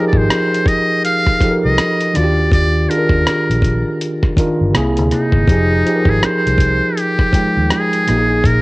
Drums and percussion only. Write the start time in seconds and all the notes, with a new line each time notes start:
0.13 kick
0.30 cross-stick, closed hi-hat
0.54 closed hi-hat
0.66 kick, closed hi-hat
1.05 closed hi-hat
1.26 kick, cross-stick
1.40 kick, closed hi-hat
1.78 cross-stick, closed hi-hat
2.00 closed hi-hat
2.15 cross-stick, closed hi-hat
2.51 kick, closed hi-hat
2.91 closed hi-hat
3.09 kick
3.27 cross-stick, closed hi-hat
3.51 closed hi-hat
3.62 kick, closed hi-hat
4.01 closed hi-hat
4.23 kick, cross-stick
4.37 kick, closed hi-hat
4.75 cross-stick, closed hi-hat
4.97 closed hi-hat
5.11 cross-stick, closed hi-hat
5.32 kick
5.48 kick, closed hi-hat
5.87 closed hi-hat
6.05 kick
6.23 cross-stick, closed hi-hat
6.47 closed hi-hat
6.58 kick, closed hi-hat
6.98 closed hi-hat
7.19 kick, cross-stick
7.33 kick, closed hi-hat
7.71 cross-stick, closed hi-hat
7.93 closed hi-hat
8.08 cross-stick, closed hi-hat
8.44 kick, closed hi-hat